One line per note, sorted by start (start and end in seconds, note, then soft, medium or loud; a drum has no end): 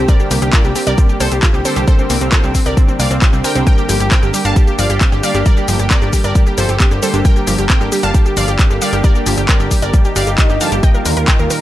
0.08 0.24 D3 loud
0.08 0.24 G3 loud
0.08 0.24 A#3 medium
0.08 0.15 C4 medium
0.08 0.24 G4 medium
0.08 0.18 A#4 medium
0.08 0.18 D5 loud
0.08 kick loud
0.08 closed hi-hat medium
0.08 shaker soft
0.20 0.30 G4 medium
0.20 shaker soft
0.31 0.40 C2 loud
0.31 0.39 D3 medium
0.31 0.39 G3 medium
0.31 0.35 A#3 medium
0.31 0.39 A#3 medium
0.31 0.39 G4 medium
0.31 0.41 G4 medium
0.31 open hi-hat loud
0.31 shaker medium
0.42 0.51 C2 medium
0.42 0.50 D3 medium
0.42 0.50 G3 medium
0.42 0.50 A#3 medium
0.42 0.50 G4 medium
0.42 0.52 G4 medium
0.42 closed hi-hat medium
0.42 shaker soft
0.53 0.69 D3 medium
0.53 0.69 G3 medium
0.53 0.69 A#3 medium
0.53 0.60 F4 medium
0.53 0.69 G4 medium
0.53 0.63 A#4 medium
0.53 0.63 D5 medium
0.53 kick loud
0.53 clap loud
0.53 closed hi-hat medium
0.53 shaker soft
0.64 0.73 C2 medium
0.64 0.74 G3 medium
0.64 0.74 G4 medium
0.64 shaker soft
0.76 0.82 C4 medium
0.76 0.86 G4 medium
0.76 open hi-hat loud
0.76 shaker medium
0.87 0.96 C2 medium
0.87 0.95 D3 medium
0.87 0.95 G3 medium
0.87 0.95 A#3 medium
0.87 0.93 G4 medium
0.87 0.95 G4 medium
0.87 0.97 A#4 medium
0.87 0.97 D5 loud
0.87 closed hi-hat medium
0.87 shaker soft
0.98 1.14 D3 medium
0.98 1.14 G3 medium
0.98 1.14 A#3 medium
0.98 1.05 C4 medium
0.98 1.14 G4 medium
0.98 1.08 G4 medium
0.98 kick loud
0.98 closed hi-hat medium
0.98 shaker soft
1.09 1.19 G4 medium
1.09 shaker soft
1.20 1.29 C2 medium
1.20 1.24 A#3 medium
1.20 1.30 A4 medium
1.20 1.30 C5 loud
1.20 open hi-hat loud
1.20 shaker medium
1.31 1.40 C2 medium
1.31 1.41 G4 medium
1.31 closed hi-hat medium
1.31 shaker soft
1.43 1.58 D3 medium
1.43 1.58 G3 medium
1.43 1.58 A#3 medium
1.43 1.49 F4 medium
1.43 1.53 G4 medium
1.43 1.58 G4 medium
1.43 kick loud
1.43 clap loud
1.43 closed hi-hat medium
1.43 shaker soft
1.54 1.63 C2 medium
1.54 1.64 G3 medium
1.54 1.64 G4 medium
1.54 shaker soft
1.65 1.81 D3 medium
1.65 1.81 G3 medium
1.65 1.81 A#3 medium
1.65 1.72 C4 medium
1.65 1.81 G4 medium
1.65 1.75 A4 medium
1.65 1.75 C5 medium
1.65 open hi-hat loud
1.65 shaker medium
1.76 1.85 C2 medium
1.76 1.83 G4 medium
1.76 1.86 G4 medium
1.76 closed hi-hat medium
1.76 shaker soft
1.88 2.03 D3 medium
1.88 2.03 G3 medium
1.88 2.03 A#3 loud
1.88 1.94 C4 medium
1.88 2.03 G4 loud
1.88 1.97 A4 medium
1.88 1.97 C5 loud
1.88 kick loud
1.88 closed hi-hat medium
1.88 shaker soft
1.99 2.09 C4 medium
1.99 shaker soft
2.10 2.19 C2 loud
2.10 2.18 D3 medium
2.10 2.18 G3 medium
2.10 2.14 A#3 medium
2.10 2.18 A#3 medium
2.10 2.20 C4 medium
2.10 2.18 G4 medium
2.10 open hi-hat loud
2.10 shaker medium
2.21 2.30 C2 medium
2.21 2.29 D3 medium
2.21 2.29 G3 medium
2.21 2.29 A#3 medium
2.21 2.31 C4 medium
2.21 2.29 G4 medium
2.21 closed hi-hat medium
2.21 shaker soft
2.32 2.48 D3 medium
2.32 2.48 G3 medium
2.32 2.48 A#3 medium
2.32 2.39 F4 medium
2.32 2.48 G4 medium
2.32 2.42 A4 medium
2.32 2.42 C5 medium
2.32 kick loud
2.32 clap loud
2.32 closed hi-hat medium
2.32 shaker soft
2.43 2.52 C2 medium
2.43 2.54 G3 medium
2.43 2.53 C4 medium
2.43 shaker soft
2.55 2.61 C4 medium
2.55 2.65 C4 medium
2.55 kick medium
2.55 open hi-hat loud
2.55 shaker medium
2.66 2.75 C2 medium
2.66 2.74 D3 medium
2.66 2.74 G3 medium
2.66 2.74 A#3 medium
2.66 2.73 G4 medium
2.66 2.74 G4 medium
2.66 2.76 A#4 medium
2.66 2.76 D5 medium
2.66 closed hi-hat medium
2.66 shaker soft
2.77 2.93 D3 medium
2.77 2.93 G3 medium
2.77 2.93 A#3 medium
2.77 2.87 C4 medium
2.77 2.84 C4 medium
2.77 2.93 G4 medium
2.77 kick loud
2.77 closed hi-hat medium
2.77 shaker soft
2.88 2.98 C4 medium
2.88 shaker soft
2.99 3.08 C2 medium
2.99 3.04 A#3 medium
2.99 3.09 D5 medium
2.99 3.09 F5 medium
2.99 open hi-hat loud
2.99 shaker medium
3.11 3.19 C2 medium
3.11 3.21 C4 medium
3.11 closed hi-hat medium
3.11 shaker soft
3.22 3.38 D3 medium
3.22 3.38 G3 medium
3.22 3.38 A#3 medium
3.22 3.32 C4 medium
3.22 3.29 F4 medium
3.22 3.38 G4 medium
3.22 kick loud
3.22 clap loud
3.22 closed hi-hat medium
3.22 shaker soft
3.33 3.42 C2 medium
3.33 3.43 G3 medium
3.33 3.43 C4 medium
3.33 shaker soft
3.44 3.60 D3 medium
3.44 3.60 G3 medium
3.44 3.60 A#3 medium
3.44 3.51 C4 medium
3.44 3.60 G4 medium
3.44 3.54 A#4 medium
3.44 3.54 G5 medium
3.44 open hi-hat loud
3.44 shaker medium
3.55 3.64 C2 medium
3.55 3.65 C4 medium
3.55 3.62 G4 medium
3.55 closed hi-hat medium
3.55 shaker soft
3.67 3.82 D3 medium
3.67 3.73 G3 medium
3.67 3.82 G3 loud
3.67 3.82 A#3 loud
3.67 3.82 G4 medium
3.67 3.77 A#4 medium
3.67 3.77 G5 loud
3.67 kick loud
3.67 closed hi-hat medium
3.67 shaker soft
3.78 3.88 G4 medium
3.78 shaker soft
3.89 3.98 G1 medium
3.89 3.97 D3 medium
3.89 3.93 F3 medium
3.89 3.97 G3 medium
3.89 3.97 A#3 medium
3.89 3.97 G4 medium
3.89 3.99 G4 medium
3.89 open hi-hat loud
3.89 shaker medium
4.00 4.09 G1 medium
4.00 4.08 D3 medium
4.00 4.08 G3 medium
4.00 4.08 A#3 medium
4.00 4.10 G4 medium
4.00 4.08 G4 medium
4.00 closed hi-hat medium
4.00 shaker soft
4.11 4.27 D3 medium
4.11 4.27 G3 medium
4.11 4.27 A#3 medium
4.11 4.18 C4 medium
4.11 4.27 G4 medium
4.11 4.21 A#4 medium
4.11 4.21 G5 medium
4.11 kick loud
4.11 clap loud
4.11 closed hi-hat medium
4.11 shaker soft
4.23 4.31 G1 medium
4.23 4.33 D3 medium
4.23 4.32 G4 medium
4.23 shaker soft
4.34 4.41 G3 medium
4.34 4.44 G4 medium
4.34 open hi-hat loud
4.34 shaker medium
4.45 4.54 G1 medium
4.45 4.53 D3 medium
4.45 4.53 G3 medium
4.45 4.53 A#3 medium
4.45 4.52 D4 medium
4.45 4.53 G4 medium
4.45 4.55 F5 medium
4.45 4.55 A5 medium
4.45 closed hi-hat medium
4.45 shaker soft
4.56 4.72 D3 medium
4.56 4.63 G3 medium
4.56 4.72 G3 medium
4.56 4.72 A#3 medium
4.56 4.66 G4 medium
4.56 4.72 G4 medium
4.56 kick loud
4.56 closed hi-hat medium
4.56 shaker soft
4.67 4.77 G4 medium
4.67 shaker soft
4.79 4.87 G1 loud
4.79 4.83 F3 medium
4.79 4.88 D5 medium
4.79 4.88 F5 medium
4.79 open hi-hat loud
4.79 shaker medium
4.90 4.99 G1 medium
4.90 5.00 G4 medium
4.90 closed hi-hat medium
4.90 shaker soft
5.01 5.17 D3 medium
5.01 5.17 G3 medium
5.01 5.17 A#3 medium
5.01 5.08 C4 medium
5.01 5.11 G4 medium
5.01 5.17 G4 medium
5.01 kick loud
5.01 clap loud
5.01 closed hi-hat medium
5.01 shaker soft
5.12 5.21 G1 medium
5.12 5.22 D3 medium
5.12 5.22 G4 medium
5.12 shaker soft
5.23 5.39 D3 medium
5.23 5.30 G3 medium
5.23 5.39 G3 medium
5.23 5.39 A#3 medium
5.23 5.39 G4 medium
5.23 5.33 D5 medium
5.23 5.33 F5 medium
5.23 open hi-hat loud
5.23 shaker medium
5.35 5.43 G1 medium
5.35 5.41 D4 medium
5.35 5.44 G4 medium
5.35 closed hi-hat medium
5.35 shaker soft
5.46 5.62 D3 loud
5.46 5.52 G3 medium
5.46 5.62 G3 medium
5.46 5.62 A#3 medium
5.46 5.62 G4 loud
5.46 5.56 A#4 medium
5.46 5.56 D5 loud
5.46 kick loud
5.46 closed hi-hat medium
5.46 shaker soft
5.57 5.67 G4 medium
5.57 shaker soft
5.68 5.77 G1 medium
5.68 5.76 D3 medium
5.68 5.72 F3 medium
5.68 5.76 G3 medium
5.68 5.76 A#3 medium
5.68 5.76 G4 medium
5.68 5.78 G4 medium
5.68 open hi-hat loud
5.68 shaker medium
5.79 5.88 G1 medium
5.79 5.87 D3 medium
5.79 5.87 G3 medium
5.79 5.87 A#3 medium
5.79 5.87 G4 medium
5.79 5.89 G4 medium
5.79 closed hi-hat medium
5.79 shaker soft
5.91 6.06 D3 medium
5.91 6.06 G3 medium
5.91 6.06 A#3 medium
5.91 5.97 C4 medium
5.91 6.06 G4 medium
5.91 6.00 A#4 medium
5.91 6.00 D5 medium
5.91 kick loud
5.91 clap loud
5.91 closed hi-hat medium
5.91 shaker soft
6.02 6.11 G1 medium
6.02 6.12 D3 medium
6.02 6.12 G4 medium
6.02 shaker soft
6.13 6.20 G3 medium
6.13 6.23 G4 medium
6.13 kick medium
6.13 open hi-hat loud
6.13 shaker medium
6.24 6.33 G1 medium
6.24 6.32 D3 medium
6.24 6.32 G3 medium
6.24 6.32 A#3 medium
6.24 6.31 D4 medium
6.24 6.32 G4 medium
6.24 6.34 A#4 medium
6.24 6.34 D5 loud
6.24 closed hi-hat medium
6.24 shaker soft
6.35 6.51 D3 medium
6.35 6.51 G3 medium
6.35 6.42 G3 medium
6.35 6.51 A#3 medium
6.35 6.45 G4 medium
6.35 6.51 G4 medium
6.35 kick loud
6.35 closed hi-hat medium
6.35 shaker soft
6.47 6.56 G4 medium
6.47 shaker soft
6.58 6.67 G1 loud
6.58 6.62 F3 medium
6.58 6.68 A4 medium
6.58 6.68 C5 medium
6.58 open hi-hat medium
6.58 shaker medium
6.69 6.78 G1 medium
6.69 6.79 G4 medium
6.69 closed hi-hat medium
6.69 shaker soft
6.80 6.96 D3 medium
6.80 6.96 G3 medium
6.80 6.96 A#3 medium
6.80 6.87 C4 medium
6.80 6.90 G4 medium
6.80 6.96 G4 medium
6.80 kick loud
6.80 clap loud
6.80 closed hi-hat medium
6.80 shaker soft
6.91 7.00 G1 medium
6.91 7.01 D3 medium
6.91 7.01 G4 medium
6.91 shaker soft
7.03 7.18 D3 medium
7.03 7.09 G3 medium
7.03 7.18 G3 medium
7.03 7.18 A#3 medium
7.03 7.18 G4 medium
7.03 7.12 A4 medium
7.03 7.12 C5 medium
7.03 open hi-hat loud
7.03 shaker medium
7.14 7.23 G1 medium
7.14 7.20 D4 medium
7.14 7.24 G4 medium
7.14 closed hi-hat medium
7.14 shaker soft
7.25 7.41 D3 medium
7.25 7.32 G3 medium
7.25 7.41 G3 medium
7.25 7.41 A#3 medium
7.25 7.41 G4 medium
7.25 7.35 A#4 medium
7.25 7.35 G5 loud
7.25 kick loud
7.25 closed hi-hat medium
7.25 shaker soft
7.36 7.46 G4 medium
7.36 shaker soft
7.47 7.56 G1 loud
7.47 7.55 D3 medium
7.47 7.51 F3 medium
7.47 7.55 G3 medium
7.47 7.55 A#3 medium
7.47 7.57 G4 medium
7.47 7.55 G4 medium
7.47 open hi-hat loud
7.47 shaker medium
7.58 7.67 G1 medium
7.58 7.66 D3 medium
7.58 7.66 G3 medium
7.58 7.66 A#3 medium
7.58 7.66 G4 medium
7.58 7.68 G4 medium
7.58 closed hi-hat medium
7.58 shaker soft
7.70 7.85 D3 medium
7.70 7.85 G3 medium
7.70 7.85 A#3 medium
7.70 7.76 C4 medium
7.70 7.85 G4 medium
7.70 7.79 A#4 medium
7.70 7.79 G5 medium
7.70 kick loud
7.70 clap loud
7.70 closed hi-hat medium
7.70 shaker soft
7.81 7.90 G1 medium
7.81 7.91 D3 medium
7.81 7.91 G4 medium
7.81 shaker soft
7.92 7.99 G3 medium
7.92 8.02 G4 medium
7.92 open hi-hat loud
7.92 shaker medium
8.03 8.12 G1 medium
8.03 8.11 D3 medium
8.03 8.11 G3 medium
8.03 8.11 A#3 medium
8.03 8.10 D4 medium
8.03 8.11 G4 medium
8.03 8.13 F5 medium
8.03 8.13 A5 medium
8.03 closed hi-hat medium
8.03 shaker soft
8.14 8.30 D3 medium
8.14 8.21 G3 medium
8.14 8.30 G3 medium
8.14 8.30 A#3 medium
8.14 8.24 G4 medium
8.14 8.30 G4 medium
8.14 kick loud
8.14 closed hi-hat medium
8.14 shaker soft
8.26 8.36 G4 medium
8.26 shaker soft
8.37 8.46 G1 loud
8.37 8.41 F3 medium
8.37 8.47 D5 medium
8.37 8.47 F5 medium
8.37 open hi-hat loud
8.37 shaker medium
8.48 8.57 G1 medium
8.48 8.58 G4 medium
8.48 closed hi-hat medium
8.48 shaker soft
8.59 8.75 D3 medium
8.59 8.75 G3 medium
8.59 8.75 A#3 medium
8.59 8.66 C4 medium
8.59 8.75 G4 medium
8.59 kick loud
8.59 clap loud
8.59 closed hi-hat medium
8.59 shaker soft
8.70 8.79 G1 medium
8.70 8.80 D3 medium
8.70 8.80 G4 medium
8.70 shaker soft
8.82 8.97 D3 medium
8.82 8.97 G3 medium
8.82 8.88 G3 medium
8.82 8.97 A#3 medium
8.82 8.97 G4 medium
8.82 8.92 D5 medium
8.82 8.92 F5 medium
8.82 open hi-hat loud
8.82 shaker medium
8.93 9.02 G1 medium
8.93 9.00 D4 medium
8.93 9.03 G4 medium
8.93 closed hi-hat medium
8.93 shaker soft
9.04 9.20 D3 loud
9.04 9.11 G3 medium
9.04 9.20 G3 medium
9.04 9.20 A#3 medium
9.04 9.20 G4 medium
9.04 9.14 A#4 medium
9.04 9.14 D5 loud
9.04 kick loud
9.04 closed hi-hat medium
9.04 shaker soft
9.15 9.25 G4 medium
9.15 shaker soft
9.26 9.35 G1 loud
9.26 9.34 D3 medium
9.26 9.30 F3 medium
9.26 9.34 G3 medium
9.26 9.34 A#3 medium
9.26 9.34 G4 medium
9.26 9.36 G4 medium
9.26 open hi-hat loud
9.26 shaker medium
9.37 9.46 G1 medium
9.37 9.45 D3 medium
9.37 9.45 G3 medium
9.37 9.45 A#3 medium
9.37 9.45 G4 medium
9.37 9.47 G4 medium
9.37 closed hi-hat medium
9.37 shaker soft
9.49 9.64 D3 medium
9.49 9.64 G3 medium
9.49 9.64 A#3 medium
9.49 9.55 C4 medium
9.49 9.64 G4 medium
9.49 9.59 A#4 medium
9.49 9.59 D5 medium
9.49 kick loud
9.49 clap loud
9.49 closed hi-hat medium
9.49 shaker soft
9.60 9.69 G1 medium
9.60 9.70 D3 medium
9.60 9.70 G4 medium
9.60 shaker soft
9.71 9.78 G3 medium
9.71 9.81 G4 medium
9.71 kick medium
9.71 open hi-hat loud
9.71 shaker medium
9.82 9.91 G1 medium
9.82 9.90 D3 medium
9.82 9.90 G3 medium
9.82 9.90 A#3 medium
9.82 9.89 D4 medium
9.82 9.90 G4 medium
9.82 9.92 A#4 medium
9.82 9.92 D5 loud
9.82 closed hi-hat medium
9.82 shaker soft
9.94 10.09 D3 medium
9.94 10.00 G3 medium
9.94 10.09 G3 medium
9.94 10.09 A#3 medium
9.94 10.09 G4 medium
9.94 10.03 G4 medium
9.94 kick loud
9.94 closed hi-hat medium
9.94 swell medium
9.94 shaker soft
10.05 10.15 G4 medium
10.05 shaker soft
10.16 10.25 G1 loud
10.16 10.20 G4 loud
10.16 10.26 D5 medium
10.16 10.26 F5 medium
10.16 open hi-hat loud
10.16 shaker medium
10.27 10.36 G1 medium
10.27 10.37 G4 medium
10.27 closed hi-hat medium
10.27 shaker soft
10.38 10.54 D3 medium
10.38 10.42 G3 medium
10.38 10.54 G3 medium
10.38 10.54 A#3 medium
10.38 10.54 G4 medium
10.38 10.48 G4 medium
10.38 kick loud
10.38 clap loud
10.38 closed hi-hat medium
10.38 shaker soft
10.49 10.58 G1 medium
10.49 10.60 G2 medium
10.49 10.59 G4 medium
10.49 shaker soft
10.61 10.76 D3 medium
10.61 10.65 F3 medium
10.61 10.76 G3 medium
10.61 10.76 A#3 medium
10.61 10.76 G4 medium
10.61 10.71 F5 medium
10.61 10.71 A5 medium
10.61 open hi-hat loud
10.61 shaker medium
10.72 10.81 G1 medium
10.72 10.76 G4 medium
10.72 10.82 G4 medium
10.72 closed hi-hat medium
10.72 shaker soft
10.83 10.90 D#3 medium
10.83 10.99 D#3 medium
10.83 10.99 G3 medium
10.83 10.99 A#3 loud
10.83 10.99 F4 medium
10.83 10.93 D#5 medium
10.83 10.93 G5 loud
10.83 kick loud
10.83 closed hi-hat medium
10.83 shaker soft
10.94 11.04 A#4 medium
10.94 shaker soft
11.05 11.14 D#2 loud
11.05 11.10 D3 medium
11.05 11.13 D#3 medium
11.05 11.13 G3 medium
11.05 11.13 A#3 medium
11.05 11.13 F4 medium
11.05 11.15 A#4 medium
11.05 open hi-hat loud
11.05 shaker medium
11.17 11.26 D#2 medium
11.17 11.25 D#3 medium
11.17 11.25 G3 medium
11.17 11.25 A#3 medium
11.17 11.25 F4 medium
11.17 11.27 A#4 medium
11.17 closed hi-hat medium
11.17 shaker soft
11.28 11.44 D#3 medium
11.28 11.44 G3 medium
11.28 11.38 A#3 medium
11.28 11.44 A#3 medium
11.28 11.44 F4 medium
11.28 11.38 D#5 medium
11.28 11.38 G5 medium
11.28 kick loud
11.28 clap loud
11.28 closed hi-hat medium
11.28 shaker soft
11.39 11.48 D#2 medium
11.39 11.49 A#2 medium
11.39 11.49 A#4 medium
11.39 shaker soft
11.50 11.57 D#3 medium
11.50 11.60 A#4 medium
11.50 open hi-hat loud
11.50 shaker medium